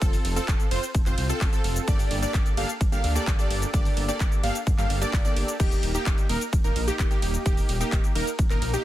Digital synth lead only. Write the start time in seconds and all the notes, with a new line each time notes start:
0.02 A4
0.36 A4
0.71 C5
1.06 C5
1.29 A4
1.53 A4
1.88 D5
2.23 D5
2.57 F5
2.92 F5
3.16 D5
3.39 D5
3.74 D5
4.09 D5
4.43 F5
4.78 F5
5.02 D5
5.25 D5
5.60 G4
5.95 G4
6.29 A#4
6.64 A#4
6.88 G4
7.11 G4
7.46 G4
7.81 G4
8.15 A#4
8.50 A#4
8.73 G4